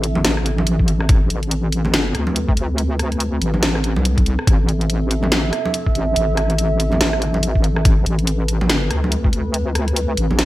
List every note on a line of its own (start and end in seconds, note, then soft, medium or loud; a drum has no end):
0.00 0.24 A1 loud
0.00 10.45 C4 medium
0.00 10.45 A4 medium
0.00 1.08 E5 medium
0.00 closed hi-hat medium
0.15 high conga medium
0.15 low conga medium
0.25 1.29 A1 loud
0.25 snare loud
0.25 closed hi-hat medium
0.37 cross-stick soft
0.46 closed hi-hat medium
0.58 low conga medium
0.67 closed hi-hat medium
0.79 kick medium
0.88 closed hi-hat medium
1.00 cross-stick medium
1.09 4.46 B4 medium
1.09 kick loud
1.09 closed hi-hat medium
1.30 1.95 A1 medium
1.30 closed hi-hat medium
1.43 closed hi-hat soft
1.51 closed hi-hat medium
1.72 closed hi-hat medium
1.85 high conga medium
1.85 low conga medium
1.94 2.13 G1 loud
1.94 snare loud
1.94 closed hi-hat medium
2.15 3.41 D2 medium
2.15 cross-stick soft
2.15 closed hi-hat medium
2.27 low conga medium
2.36 closed hi-hat medium
2.49 kick medium
2.57 closed hi-hat medium
2.78 closed hi-hat medium
2.99 cross-stick medium
2.99 closed hi-hat medium
3.12 closed hi-hat soft
3.20 closed hi-hat medium
3.41 3.98 A1 medium
3.41 closed hi-hat medium
3.54 high conga medium
3.54 low conga medium
3.63 snare loud
3.63 closed hi-hat medium
3.75 cross-stick soft
3.84 closed hi-hat medium
3.96 4.37 C2 loud
3.96 low conga medium
4.05 closed hi-hat medium
4.18 kick medium
4.18 closed hi-hat soft
4.26 closed hi-hat medium
4.39 cross-stick medium
4.47 5.52 A1 loud
4.47 7.84 E5 medium
4.47 kick loud
4.47 closed hi-hat medium
4.69 closed hi-hat soft
4.81 closed hi-hat soft
4.90 closed hi-hat medium
5.11 closed hi-hat medium
5.23 high conga medium
5.23 low conga medium
5.32 snare loud
5.32 closed hi-hat medium
5.53 cross-stick medium
5.53 closed hi-hat soft
5.65 low conga medium
5.74 closed hi-hat medium
5.86 kick medium
5.95 6.15 A1 medium
5.95 closed hi-hat soft
6.16 7.00 A1 loud
6.16 closed hi-hat medium
6.37 cross-stick medium
6.37 closed hi-hat soft
6.50 closed hi-hat soft
6.58 closed hi-hat medium
6.80 closed hi-hat medium
6.92 high conga medium
6.92 low conga medium
7.01 8.05 A1 loud
7.01 snare loud
7.01 closed hi-hat medium
7.13 cross-stick medium
7.22 closed hi-hat soft
7.34 low conga medium
7.43 closed hi-hat medium
7.55 kick medium
7.64 closed hi-hat soft
7.76 cross-stick medium
7.85 10.45 B4 medium
7.85 kick loud
7.85 closed hi-hat medium
8.06 8.71 A1 medium
8.06 closed hi-hat medium
8.19 closed hi-hat soft
8.27 closed hi-hat medium
8.48 closed hi-hat medium
8.61 high conga medium
8.61 low conga medium
8.70 8.89 G1 loud
8.70 snare loud
8.70 closed hi-hat medium
8.91 10.16 D2 medium
8.91 cross-stick medium
8.91 closed hi-hat medium
9.04 low conga medium
9.12 closed hi-hat medium
9.24 kick medium
9.33 closed hi-hat medium
9.54 closed hi-hat medium
9.75 cross-stick medium
9.75 closed hi-hat medium
9.88 closed hi-hat soft
9.96 closed hi-hat medium
10.17 10.45 A1 medium
10.17 closed hi-hat medium
10.31 high conga medium
10.31 low conga medium
10.39 snare loud
10.39 closed hi-hat medium